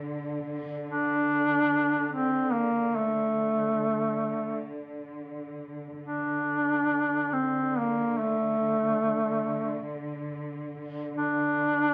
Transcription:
0.00 6.00 D3 soft
0.90 2.06 D4 loud
2.06 2.54 C4 medium
2.06 2.11 D4 medium
2.52 2.98 A#3 medium
2.96 4.68 A3 medium
6.01 11.94 D3 soft
6.01 7.35 D4 medium
7.33 7.80 C4 medium
7.78 8.21 A#3 medium
8.20 9.89 A3 medium
11.17 11.94 D4 loud

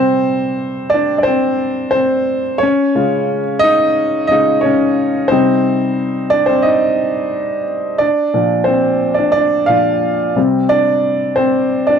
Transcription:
0.00 2.64 C3 soft
0.00 2.64 G3 soft
0.00 1.27 C4 medium
0.00 0.95 C5 medium
0.90 1.17 D5 loud
0.94 1.19 D4 medium
1.18 1.26 D5 medium
1.23 1.89 C5 medium
1.27 1.91 C4 medium
1.91 2.40 C5 medium
1.95 2.42 C4 medium
2.58 3.64 C#5 loud
2.63 3.60 C#4 medium
2.95 3.40 C#3 medium
2.95 3.40 G#3 medium
2.95 3.41 F4 medium
3.59 4.27 D#4 medium
3.59 4.26 D#5 loud
4.27 4.61 C#3 soft
4.27 4.61 G#3 soft
4.27 4.61 F4 medium
4.27 4.64 D#5 loud
4.32 4.63 D#4 medium
4.61 5.10 C#5 medium
4.65 5.12 C#4 medium
5.28 5.76 C3 medium
5.28 5.76 G3 soft
5.28 6.29 C4 medium
5.28 5.76 D#4 medium
5.28 6.34 C5 medium
6.30 6.49 D4 medium
6.30 6.47 D5 loud
6.46 6.65 C4 medium
6.46 6.65 C5 medium
6.62 7.63 D#4 medium
6.62 7.61 D#5 medium
7.98 8.33 D4 medium
7.98 8.63 D5 medium
8.34 8.79 A#2 medium
8.34 8.79 F3 soft
8.34 8.79 D4 medium
8.64 9.15 C4 medium
8.64 9.19 C5 medium
9.14 9.30 D5 medium
9.19 9.35 D4 medium
9.32 9.40 D5 loud
9.36 9.44 D4 medium
9.66 9.99 A#2 soft
9.66 10.00 F3 soft
9.66 10.00 D4 medium
9.66 10.33 F4 medium
9.66 10.31 F5 medium
10.36 10.81 C3 soft
10.36 10.82 G3 soft
10.36 10.82 C4 medium
10.69 11.34 D4 medium
10.69 11.33 D5 loud
11.36 11.85 C4 medium
11.36 11.89 C5 medium
11.87 11.99 D4 medium
11.87 11.99 D5 medium

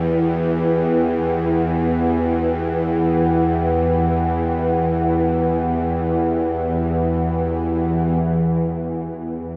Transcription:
0.00 8.20 E2 medium
0.00 8.19 E3 medium
0.00 9.57 E4 medium
0.00 9.57 B4 medium
0.00 9.57 F#5 medium
0.00 9.57 G5 medium
8.20 9.57 E2 medium
8.20 9.57 E3 medium

